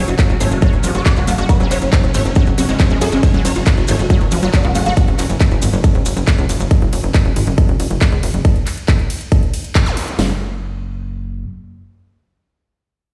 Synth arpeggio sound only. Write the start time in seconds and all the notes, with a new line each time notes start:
0.40 A3
0.62 F#3
0.84 F3
0.95 F#3
1.06 F#3
1.17 F#3
1.27 A3
1.38 F#4
1.60 F#3
1.71 F#3
2.14 A3
2.36 F#3
2.58 F#4
2.69 G#3
2.80 F3
2.90 G#3
3.01 G#4
3.12 G#3
3.34 F#3
3.45 F#3
3.88 A3
4.10 F#3
4.32 F3
4.43 F#3
4.54 F#3
4.64 F#3
4.75 A3
4.86 F#4